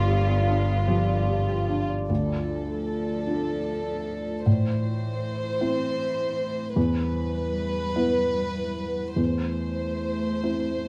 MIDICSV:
0, 0, Header, 1, 7, 480
1, 0, Start_track
1, 0, Key_signature, 0, "minor"
1, 0, Tempo, 807537
1, 1245, Time_signature, 6, 3, 24, 8
1, 1714, Tempo, 778210
1, 4594, Tempo, 815217
1, 5554, Tempo, 841515
1, 6522, End_track
2, 0, Start_track
2, 0, Title_t, "Harp"
2, 0, Program_c, 0, 46
2, 0, Note_on_c, 0, 67, 53
2, 0, Note_on_c, 0, 71, 47
2, 0, Note_on_c, 0, 74, 37
2, 0, Note_on_c, 0, 77, 41
2, 150, Note_off_c, 0, 67, 0
2, 157, Note_on_c, 0, 67, 44
2, 273, Note_off_c, 0, 77, 0
2, 280, Note_on_c, 0, 77, 33
2, 397, Note_off_c, 0, 71, 0
2, 404, Note_on_c, 0, 71, 35
2, 510, Note_off_c, 0, 67, 0
2, 517, Note_on_c, 0, 67, 52
2, 636, Note_off_c, 0, 74, 0
2, 644, Note_on_c, 0, 74, 41
2, 875, Note_off_c, 0, 67, 0
2, 882, Note_on_c, 0, 67, 47
2, 1120, Note_off_c, 0, 74, 0
2, 1127, Note_on_c, 0, 74, 35
2, 1262, Note_off_c, 0, 67, 0
2, 1265, Note_off_c, 0, 71, 0
2, 2631, Note_off_c, 0, 77, 0
2, 2707, Note_off_c, 0, 74, 0
2, 6522, End_track
3, 0, Start_track
3, 0, Title_t, "Violin section"
3, 0, Program_c, 1, 48
3, 0, Note_on_c, 1, 65, 63
3, 1106, Note_off_c, 1, 65, 0
3, 1244, Note_on_c, 1, 69, 39
3, 2662, Note_off_c, 1, 69, 0
3, 2683, Note_on_c, 1, 72, 49
3, 4080, Note_off_c, 1, 72, 0
3, 4092, Note_on_c, 1, 71, 62
3, 5523, Note_off_c, 1, 71, 0
3, 5548, Note_on_c, 1, 72, 44
3, 6522, Note_off_c, 1, 72, 0
3, 6522, End_track
4, 0, Start_track
4, 0, Title_t, "Analog synth pad"
4, 0, Program_c, 2, 89
4, 0, Note_on_c, 2, 55, 65
4, 0, Note_on_c, 2, 65, 65
4, 0, Note_on_c, 2, 74, 67
4, 1217, Note_off_c, 2, 74, 0
4, 1241, Note_off_c, 2, 65, 0
4, 1242, Note_off_c, 2, 55, 0
4, 1244, Note_on_c, 2, 57, 49
4, 1245, Note_on_c, 2, 74, 51
4, 1250, Note_on_c, 2, 65, 48
4, 2663, Note_off_c, 2, 74, 0
4, 2665, Note_off_c, 2, 65, 0
4, 2695, Note_on_c, 2, 64, 51
4, 2701, Note_on_c, 2, 72, 50
4, 4082, Note_off_c, 2, 57, 0
4, 4111, Note_on_c, 2, 71, 58
4, 4113, Note_on_c, 2, 55, 60
4, 4114, Note_off_c, 2, 72, 0
4, 5555, Note_off_c, 2, 71, 0
4, 5556, Note_off_c, 2, 55, 0
4, 5557, Note_off_c, 2, 64, 0
4, 5560, Note_on_c, 2, 57, 56
4, 5561, Note_on_c, 2, 72, 52
4, 5564, Note_on_c, 2, 64, 54
4, 6522, Note_off_c, 2, 57, 0
4, 6522, Note_off_c, 2, 64, 0
4, 6522, Note_off_c, 2, 72, 0
4, 6522, End_track
5, 0, Start_track
5, 0, Title_t, "Felt piano"
5, 0, Program_c, 3, 0
5, 0, Control_c, 3, 64, 127
5, 0, Note_on_c, 3, 43, 41
5, 0, Note_on_c, 3, 62, 37
5, 38, Note_on_c, 3, 67, 34
5, 282, Note_off_c, 3, 62, 0
5, 282, Note_on_c, 3, 62, 33
5, 426, Note_off_c, 3, 67, 0
5, 522, Note_on_c, 3, 53, 35
5, 667, Note_off_c, 3, 62, 0
5, 763, Note_on_c, 3, 67, 34
5, 908, Note_off_c, 3, 53, 0
5, 1004, Note_on_c, 3, 62, 31
5, 1150, Note_off_c, 3, 67, 0
5, 1221, Note_off_c, 3, 43, 0
5, 1244, Note_off_c, 3, 62, 0
5, 1246, Note_on_c, 3, 38, 31
5, 1255, Control_c, 3, 64, 0
5, 1370, Control_c, 3, 64, 127
5, 1953, Note_on_c, 3, 62, 28
5, 1955, Note_on_c, 3, 65, 28
5, 2660, Note_off_c, 3, 62, 0
5, 2661, Note_off_c, 3, 65, 0
5, 2663, Note_off_c, 3, 38, 0
5, 2687, Note_on_c, 3, 45, 37
5, 2698, Control_c, 3, 64, 0
5, 2797, Control_c, 3, 64, 127
5, 3394, Note_on_c, 3, 60, 34
5, 3396, Note_on_c, 3, 64, 39
5, 4081, Note_off_c, 3, 60, 0
5, 4082, Note_off_c, 3, 45, 0
5, 4082, Note_off_c, 3, 64, 0
5, 4107, Note_on_c, 3, 40, 52
5, 4117, Control_c, 3, 64, 0
5, 4202, Control_c, 3, 64, 127
5, 4832, Note_on_c, 3, 59, 39
5, 4832, Note_on_c, 3, 64, 43
5, 5530, Note_off_c, 3, 40, 0
5, 5531, Note_off_c, 3, 59, 0
5, 5531, Note_off_c, 3, 64, 0
5, 5542, Note_on_c, 3, 40, 37
5, 5565, Control_c, 3, 64, 0
5, 5653, Control_c, 3, 64, 127
5, 6267, Note_on_c, 3, 60, 27
5, 6269, Note_on_c, 3, 64, 28
5, 6522, Note_off_c, 3, 40, 0
5, 6522, Note_off_c, 3, 60, 0
5, 6522, Note_off_c, 3, 64, 0
5, 6522, End_track
6, 0, Start_track
6, 0, Title_t, "Cello"
6, 0, Program_c, 4, 42
6, 0, Note_on_c, 4, 59, 62
6, 978, Note_off_c, 4, 59, 0
6, 1244, Note_on_c, 4, 53, 34
6, 2662, Note_off_c, 4, 53, 0
6, 2679, Note_on_c, 4, 52, 42
6, 4078, Note_off_c, 4, 52, 0
6, 4100, Note_on_c, 4, 55, 51
6, 5527, Note_off_c, 4, 55, 0
6, 5546, Note_on_c, 4, 57, 41
6, 6522, Note_off_c, 4, 57, 0
6, 6522, End_track
7, 0, Start_track
7, 0, Title_t, "Double bass"
7, 0, Program_c, 5, 43
7, 0, Note_on_c, 5, 31, 58
7, 1219, Note_off_c, 5, 31, 0
7, 6522, End_track
0, 0, End_of_file